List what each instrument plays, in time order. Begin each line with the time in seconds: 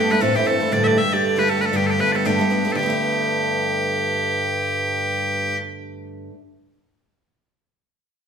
Already playing: bagpipes G2 G4, steel-string acoustic guitar D4
0.10 steel-string acoustic guitar G3 A3 B3 D4, bagpipes B4
0.21 steel-string acoustic guitar A2 E3 A3 C4 E4, bagpipes A4
0.35 steel-string acoustic guitar E3 A3 C4 E4, bagpipes G4
0.45 steel-string acoustic guitar E3 A3 C4 E4, bagpipes A4
0.60 steel-string acoustic guitar E3 A3 C4 E4
0.71 steel-string acoustic guitar D2 A2 D3 G3 A3 G4, bagpipes D5
0.84 bagpipes D5 E5
0.96 steel-string acoustic guitar D3 G3 A3 G4, bagpipes E5
1.11 steel-string acoustic guitar D3 G3 A3 G4, bagpipes D5
1.24 bagpipes D5
1.36 steel-string acoustic guitar D3 G3 A3 G4, bagpipes B4
1.47 steel-string acoustic guitar D3 G3 A3 G4, bagpipes A4
1.61 steel-string acoustic guitar D3 G3 A3 G4, bagpipes B4
1.65 bagpipes A4
1.73 steel-string acoustic guitar G2 D3 G3 A3 B3 D4, bagpipes G4
1.87 bagpipes G4 A4
1.99 steel-string acoustic guitar G3 A3 B3 D4, bagpipes B4
2.12 steel-string acoustic guitar G3 A3 B3 D4, bagpipes A4 D5
2.25 steel-string acoustic guitar G2 D3 G3 A3 B3 D4, bagpipes G4
2.39 steel-string acoustic guitar G3 A3 B3 D4
2.50 steel-string acoustic guitar G3 A3 B3 D4
2.65 steel-string acoustic guitar G3 A3 B3 D4
2.70 steel-string acoustic guitar G2, bagpipes A4
2.75 steel-string acoustic guitar D3 G3, bagpipes G4
2.83 steel-string acoustic guitar A3 B3
2.90 steel-string acoustic guitar D4